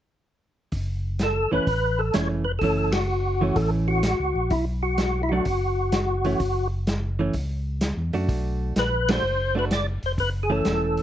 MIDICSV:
0, 0, Header, 1, 5, 480
1, 0, Start_track
1, 0, Key_signature, 3, "minor"
1, 0, Tempo, 472813
1, 739, Time_signature, 4, 2, 24, 8
1, 11194, End_track
2, 0, Start_track
2, 0, Title_t, "Tonewheel organ"
2, 0, Program_c, 0, 16
2, 1249, Note_on_c, 0, 69, 88
2, 1536, Note_off_c, 0, 69, 0
2, 1551, Note_on_c, 0, 71, 98
2, 2020, Note_on_c, 0, 69, 81
2, 2041, Note_off_c, 0, 71, 0
2, 2174, Note_on_c, 0, 73, 84
2, 2183, Note_off_c, 0, 69, 0
2, 2321, Note_off_c, 0, 73, 0
2, 2483, Note_on_c, 0, 71, 81
2, 2558, Note_off_c, 0, 71, 0
2, 2628, Note_on_c, 0, 69, 99
2, 2961, Note_on_c, 0, 66, 81
2, 2978, Note_off_c, 0, 69, 0
2, 3615, Note_on_c, 0, 69, 88
2, 3628, Note_off_c, 0, 66, 0
2, 3762, Note_off_c, 0, 69, 0
2, 3938, Note_on_c, 0, 66, 92
2, 4576, Note_on_c, 0, 64, 78
2, 4597, Note_off_c, 0, 66, 0
2, 4723, Note_off_c, 0, 64, 0
2, 4900, Note_on_c, 0, 66, 77
2, 5298, Note_off_c, 0, 66, 0
2, 5311, Note_on_c, 0, 64, 54
2, 5371, Note_on_c, 0, 66, 82
2, 5395, Note_off_c, 0, 64, 0
2, 6778, Note_off_c, 0, 66, 0
2, 8923, Note_on_c, 0, 71, 93
2, 9245, Note_off_c, 0, 71, 0
2, 9266, Note_on_c, 0, 72, 108
2, 9693, Note_off_c, 0, 72, 0
2, 9735, Note_on_c, 0, 71, 93
2, 9798, Note_off_c, 0, 71, 0
2, 9874, Note_on_c, 0, 74, 91
2, 10016, Note_off_c, 0, 74, 0
2, 10212, Note_on_c, 0, 72, 79
2, 10276, Note_off_c, 0, 72, 0
2, 10355, Note_on_c, 0, 71, 97
2, 10454, Note_off_c, 0, 71, 0
2, 10589, Note_on_c, 0, 68, 62
2, 10675, Note_off_c, 0, 68, 0
2, 10681, Note_on_c, 0, 69, 96
2, 11194, Note_off_c, 0, 69, 0
2, 11194, End_track
3, 0, Start_track
3, 0, Title_t, "Hollow-body jazz guitar"
3, 0, Program_c, 1, 26
3, 1540, Note_on_c, 1, 52, 54
3, 1550, Note_on_c, 1, 57, 69
3, 1552, Note_on_c, 1, 61, 72
3, 1683, Note_off_c, 1, 52, 0
3, 1688, Note_off_c, 1, 57, 0
3, 1689, Note_off_c, 1, 61, 0
3, 2181, Note_on_c, 1, 57, 59
3, 2182, Note_on_c, 1, 52, 62
3, 2194, Note_on_c, 1, 61, 56
3, 2472, Note_off_c, 1, 52, 0
3, 2472, Note_off_c, 1, 57, 0
3, 2478, Note_off_c, 1, 61, 0
3, 2668, Note_on_c, 1, 52, 55
3, 2676, Note_on_c, 1, 57, 56
3, 2680, Note_on_c, 1, 61, 60
3, 2955, Note_off_c, 1, 52, 0
3, 2959, Note_off_c, 1, 57, 0
3, 2961, Note_off_c, 1, 61, 0
3, 3464, Note_on_c, 1, 52, 61
3, 3472, Note_on_c, 1, 57, 64
3, 3484, Note_on_c, 1, 61, 70
3, 4069, Note_off_c, 1, 52, 0
3, 4073, Note_off_c, 1, 57, 0
3, 4079, Note_off_c, 1, 61, 0
3, 5399, Note_on_c, 1, 54, 54
3, 5407, Note_on_c, 1, 62, 65
3, 5408, Note_on_c, 1, 57, 51
3, 5532, Note_off_c, 1, 54, 0
3, 5537, Note_off_c, 1, 57, 0
3, 5537, Note_off_c, 1, 62, 0
3, 6343, Note_on_c, 1, 52, 49
3, 6354, Note_on_c, 1, 57, 62
3, 6357, Note_on_c, 1, 61, 59
3, 6484, Note_off_c, 1, 52, 0
3, 6490, Note_off_c, 1, 57, 0
3, 6492, Note_off_c, 1, 61, 0
3, 7302, Note_on_c, 1, 52, 63
3, 7312, Note_on_c, 1, 57, 63
3, 7316, Note_on_c, 1, 61, 66
3, 7444, Note_off_c, 1, 52, 0
3, 7449, Note_off_c, 1, 57, 0
3, 7451, Note_off_c, 1, 61, 0
3, 8259, Note_on_c, 1, 57, 50
3, 8266, Note_on_c, 1, 62, 60
3, 8272, Note_on_c, 1, 66, 63
3, 8867, Note_off_c, 1, 57, 0
3, 8871, Note_off_c, 1, 62, 0
3, 8874, Note_off_c, 1, 66, 0
3, 9232, Note_on_c, 1, 57, 64
3, 9241, Note_on_c, 1, 62, 62
3, 9242, Note_on_c, 1, 66, 71
3, 9369, Note_off_c, 1, 57, 0
3, 9374, Note_off_c, 1, 62, 0
3, 9374, Note_off_c, 1, 66, 0
3, 9697, Note_on_c, 1, 57, 57
3, 9706, Note_on_c, 1, 62, 72
3, 9719, Note_on_c, 1, 66, 69
3, 9841, Note_off_c, 1, 57, 0
3, 9846, Note_off_c, 1, 62, 0
3, 9853, Note_off_c, 1, 66, 0
3, 10658, Note_on_c, 1, 52, 52
3, 10658, Note_on_c, 1, 57, 61
3, 10670, Note_on_c, 1, 61, 60
3, 11194, Note_off_c, 1, 52, 0
3, 11194, Note_off_c, 1, 57, 0
3, 11194, Note_off_c, 1, 61, 0
3, 11194, End_track
4, 0, Start_track
4, 0, Title_t, "Tonewheel organ"
4, 0, Program_c, 2, 16
4, 731, Note_on_c, 2, 30, 67
4, 1498, Note_off_c, 2, 30, 0
4, 1546, Note_on_c, 2, 30, 35
4, 1624, Note_off_c, 2, 30, 0
4, 1692, Note_on_c, 2, 33, 77
4, 2142, Note_off_c, 2, 33, 0
4, 2189, Note_on_c, 2, 29, 69
4, 2631, Note_off_c, 2, 29, 0
4, 2649, Note_on_c, 2, 30, 80
4, 3574, Note_off_c, 2, 30, 0
4, 3611, Note_on_c, 2, 33, 81
4, 4215, Note_off_c, 2, 33, 0
4, 4260, Note_on_c, 2, 37, 62
4, 4409, Note_off_c, 2, 37, 0
4, 4423, Note_on_c, 2, 34, 70
4, 4571, Note_off_c, 2, 34, 0
4, 4577, Note_on_c, 2, 35, 77
4, 5498, Note_off_c, 2, 35, 0
4, 5538, Note_on_c, 2, 30, 74
4, 6459, Note_off_c, 2, 30, 0
4, 6492, Note_on_c, 2, 30, 82
4, 7416, Note_off_c, 2, 30, 0
4, 7455, Note_on_c, 2, 37, 80
4, 8057, Note_off_c, 2, 37, 0
4, 8088, Note_on_c, 2, 40, 59
4, 8243, Note_off_c, 2, 40, 0
4, 8263, Note_on_c, 2, 42, 61
4, 8409, Note_on_c, 2, 35, 81
4, 8411, Note_off_c, 2, 42, 0
4, 8861, Note_off_c, 2, 35, 0
4, 8893, Note_on_c, 2, 34, 71
4, 9343, Note_off_c, 2, 34, 0
4, 9367, Note_on_c, 2, 30, 69
4, 10137, Note_off_c, 2, 30, 0
4, 10180, Note_on_c, 2, 29, 63
4, 10328, Note_off_c, 2, 29, 0
4, 10330, Note_on_c, 2, 30, 71
4, 10781, Note_off_c, 2, 30, 0
4, 10818, Note_on_c, 2, 28, 71
4, 11194, Note_off_c, 2, 28, 0
4, 11194, End_track
5, 0, Start_track
5, 0, Title_t, "Drums"
5, 730, Note_on_c, 9, 46, 41
5, 734, Note_on_c, 9, 36, 31
5, 831, Note_off_c, 9, 46, 0
5, 836, Note_off_c, 9, 36, 0
5, 1210, Note_on_c, 9, 42, 45
5, 1214, Note_on_c, 9, 38, 59
5, 1311, Note_off_c, 9, 42, 0
5, 1315, Note_off_c, 9, 38, 0
5, 1696, Note_on_c, 9, 36, 32
5, 1697, Note_on_c, 9, 46, 41
5, 1798, Note_off_c, 9, 36, 0
5, 1798, Note_off_c, 9, 46, 0
5, 2168, Note_on_c, 9, 42, 57
5, 2172, Note_on_c, 9, 38, 72
5, 2270, Note_off_c, 9, 42, 0
5, 2274, Note_off_c, 9, 38, 0
5, 2653, Note_on_c, 9, 46, 42
5, 2655, Note_on_c, 9, 36, 34
5, 2754, Note_off_c, 9, 46, 0
5, 2757, Note_off_c, 9, 36, 0
5, 2968, Note_on_c, 9, 51, 55
5, 2972, Note_on_c, 9, 38, 61
5, 3070, Note_off_c, 9, 51, 0
5, 3074, Note_off_c, 9, 38, 0
5, 3612, Note_on_c, 9, 46, 46
5, 3616, Note_on_c, 9, 36, 35
5, 3714, Note_off_c, 9, 46, 0
5, 3718, Note_off_c, 9, 36, 0
5, 4089, Note_on_c, 9, 42, 57
5, 4093, Note_on_c, 9, 38, 68
5, 4191, Note_off_c, 9, 42, 0
5, 4195, Note_off_c, 9, 38, 0
5, 4572, Note_on_c, 9, 46, 44
5, 4578, Note_on_c, 9, 36, 36
5, 4674, Note_off_c, 9, 46, 0
5, 4680, Note_off_c, 9, 36, 0
5, 5053, Note_on_c, 9, 42, 50
5, 5057, Note_on_c, 9, 38, 59
5, 5154, Note_off_c, 9, 42, 0
5, 5158, Note_off_c, 9, 38, 0
5, 5535, Note_on_c, 9, 46, 46
5, 5542, Note_on_c, 9, 36, 34
5, 5636, Note_off_c, 9, 46, 0
5, 5643, Note_off_c, 9, 36, 0
5, 6012, Note_on_c, 9, 42, 59
5, 6016, Note_on_c, 9, 38, 71
5, 6113, Note_off_c, 9, 42, 0
5, 6117, Note_off_c, 9, 38, 0
5, 6341, Note_on_c, 9, 46, 33
5, 6442, Note_off_c, 9, 46, 0
5, 6496, Note_on_c, 9, 46, 46
5, 6498, Note_on_c, 9, 36, 32
5, 6597, Note_off_c, 9, 46, 0
5, 6599, Note_off_c, 9, 36, 0
5, 6974, Note_on_c, 9, 42, 48
5, 6978, Note_on_c, 9, 38, 68
5, 7076, Note_off_c, 9, 42, 0
5, 7080, Note_off_c, 9, 38, 0
5, 7446, Note_on_c, 9, 46, 45
5, 7455, Note_on_c, 9, 36, 32
5, 7547, Note_off_c, 9, 46, 0
5, 7556, Note_off_c, 9, 36, 0
5, 7927, Note_on_c, 9, 42, 58
5, 7932, Note_on_c, 9, 38, 74
5, 8029, Note_off_c, 9, 42, 0
5, 8033, Note_off_c, 9, 38, 0
5, 8255, Note_on_c, 9, 46, 33
5, 8357, Note_off_c, 9, 46, 0
5, 8413, Note_on_c, 9, 36, 31
5, 8416, Note_on_c, 9, 46, 44
5, 8515, Note_off_c, 9, 36, 0
5, 8517, Note_off_c, 9, 46, 0
5, 8893, Note_on_c, 9, 42, 53
5, 8897, Note_on_c, 9, 38, 66
5, 8994, Note_off_c, 9, 42, 0
5, 8998, Note_off_c, 9, 38, 0
5, 9223, Note_on_c, 9, 51, 63
5, 9227, Note_on_c, 9, 38, 71
5, 9325, Note_off_c, 9, 51, 0
5, 9329, Note_off_c, 9, 38, 0
5, 9855, Note_on_c, 9, 42, 55
5, 9859, Note_on_c, 9, 38, 70
5, 9957, Note_off_c, 9, 42, 0
5, 9961, Note_off_c, 9, 38, 0
5, 10180, Note_on_c, 9, 46, 35
5, 10281, Note_off_c, 9, 46, 0
5, 10335, Note_on_c, 9, 36, 34
5, 10339, Note_on_c, 9, 46, 48
5, 10436, Note_off_c, 9, 36, 0
5, 10440, Note_off_c, 9, 46, 0
5, 10811, Note_on_c, 9, 42, 46
5, 10815, Note_on_c, 9, 38, 67
5, 10912, Note_off_c, 9, 42, 0
5, 10916, Note_off_c, 9, 38, 0
5, 11139, Note_on_c, 9, 46, 36
5, 11194, Note_off_c, 9, 46, 0
5, 11194, End_track
0, 0, End_of_file